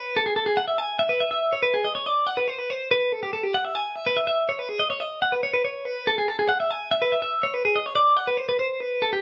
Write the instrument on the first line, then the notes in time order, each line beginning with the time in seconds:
clean electric guitar
Already playing: B4
0.17 A4
0.26 G#4
0.36 A4
0.46 G#4
0.57 F#5
0.68 E5
0.78 G#5
0.99 E5
1.09 B4
1.20 E5
1.31 E5
1.53 C#5
1.63 B4
1.74 G#4
1.85 D#5
1.95 C#5
2.06 D5
2.27 F#5
2.37 B4
2.48 C5
2.59 B4
2.70 C5
2.91 B4
3.13 A4
3.23 G4
3.33 A4
3.43 G4
3.54 F#5
3.65 E5
3.75 G#5
3.96 E5
4.06 B4
4.17 E5
4.27 E5
4.49 C#5
4.59 B4
4.69 G#4
4.80 D#5
4.90 C#5
5.00 D#5
5.22 F#5
5.32 B4
5.43 C#5
5.54 B4
5.65 C#5
5.85 B4
6.07 A4
6.18 G#4
6.28 A4
6.39 G#4
6.49 F#5
6.60 E5
6.71 G#5
6.91 E5
7.02 B4
7.12 E5
7.22 E5
7.43 C#5
7.54 B4
7.65 G#4
7.76 D#5
7.86 C#5
7.96 D5
8.17 F#5
8.27 B4
8.37 C5
8.49 B4
8.59 C5
8.80 B4
9.02 A4
9.13 G4